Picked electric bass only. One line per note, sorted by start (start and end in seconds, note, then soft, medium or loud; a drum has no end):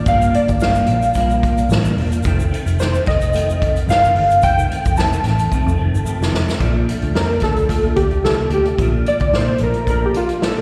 0.06 0.28 G1 loud
0.49 0.81 G1 medium
0.88 1.66 A#1 medium
1.69 1.91 A1 medium
1.97 2.19 E1 medium
2.25 2.46 F1 medium
2.66 2.98 F1 medium
3.07 3.84 F1 medium
3.88 4.10 G1 medium
4.15 4.37 G1 medium
4.44 4.65 F1 medium
4.86 5.17 F1 medium
5.24 5.46 A1 medium
5.66 5.76 F2 medium
5.79 5.91 F1 medium
5.94 6.04 G1 medium
6.06 muted picked electric bass stroke soft
6.21 6.31 F1 medium
6.33 6.55 F2 medium
6.60 6.94 A#1 loud
7.03 7.13 D2 medium
7.16 7.37 F2 medium
7.42 7.86 D2 medium
7.96 8.24 D2 medium
8.24 8.45 C2 medium
8.50 8.72 D2 medium
8.78 9.12 A#1 medium
9.20 9.34 D2 medium
9.33 9.55 A#2 loud
9.60 10.62 A#1 medium